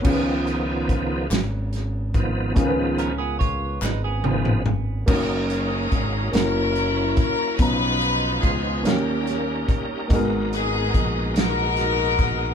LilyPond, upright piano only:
<<
  \new Staff \with { instrumentName = "Upright piano" } { \time 6/8 \key cis \mixolydian \tempo 4. = 48 << { cis''16 r2 r8. | r2. | r2. | r2. |
r2. | } \\ { <b cis' eis' gis' b'>2. | <b cis' eis' gis' ais' b'>2. | <ais cis' dis' fis' ais'>4. <ais cis' e' fis' ais'>4. | <b cis' dis' eis' ais''>4. <ais cis' dis' eis' g' ais'>4. |
<ais b dis' fis' gis' ais'>2. | } >> }
  \new Staff \with { instrumentName = "Upright piano" } { \clef bass \time 6/8 \key cis \mixolydian cis4. r4. | cis4. r4. | r2. | b,4. dis4. |
gis,4. r4. | }
>>